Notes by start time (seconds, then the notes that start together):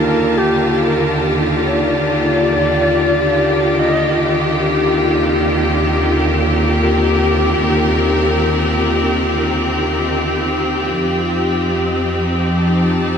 Already playing: D#2 D3 D#3 F4 G4 A#4 A5
0.38 G4
0.83 A#4
1.65 D5
3.79 D#5
4.19 D#2
4.49 C4
5.65 A#4
10.94 F2 F3
11.08 D#4
12.56 A5